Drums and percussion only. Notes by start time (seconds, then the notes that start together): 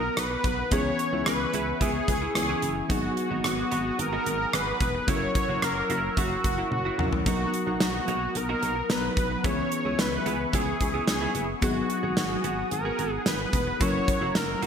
0.17 cross-stick, closed hi-hat
0.44 kick, closed hi-hat
0.71 kick, closed hi-hat
0.99 closed hi-hat
1.26 cross-stick, closed hi-hat
1.53 closed hi-hat
1.81 kick, closed hi-hat
2.08 kick, closed hi-hat
2.35 cross-stick, closed hi-hat
2.62 closed hi-hat
2.90 kick, closed hi-hat
3.17 closed hi-hat
3.44 cross-stick, closed hi-hat
3.72 closed hi-hat
3.99 closed hi-hat
4.26 closed hi-hat
4.53 cross-stick, closed hi-hat
4.80 kick, closed hi-hat
5.08 kick, closed hi-hat
5.35 kick, closed hi-hat
5.62 cross-stick, closed hi-hat
5.90 closed hi-hat
6.17 kick, closed hi-hat
6.44 kick, closed hi-hat
6.72 high tom
6.99 mid tom
7.13 floor tom
7.26 kick, closed hi-hat
7.54 closed hi-hat
7.80 snare, closed hi-hat
8.08 closed hi-hat
8.35 closed hi-hat
8.63 closed hi-hat
8.90 snare, closed hi-hat
9.17 kick, closed hi-hat
9.44 kick, closed hi-hat
9.72 closed hi-hat
9.99 snare, closed hi-hat
10.26 closed hi-hat
10.53 kick, closed hi-hat
10.81 kick, closed hi-hat
11.07 snare, closed hi-hat
11.35 closed hi-hat
11.62 kick, closed hi-hat
11.90 closed hi-hat
12.17 snare, closed hi-hat
12.44 closed hi-hat
12.71 closed hi-hat
12.99 closed hi-hat
13.26 snare, closed hi-hat
13.53 kick, closed hi-hat
13.81 kick, closed hi-hat
14.08 kick, closed hi-hat
14.35 snare, closed hi-hat
14.63 closed hi-hat